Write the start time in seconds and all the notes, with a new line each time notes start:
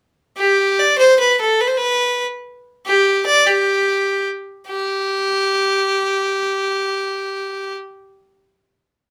0.37 G4
0.79 D5
0.98 C5
1.19 B4
1.40 A4
1.61 B4
1.67 C5
1.77 B4
2.86 G4
3.26 D5
3.46 G4
4.67 G4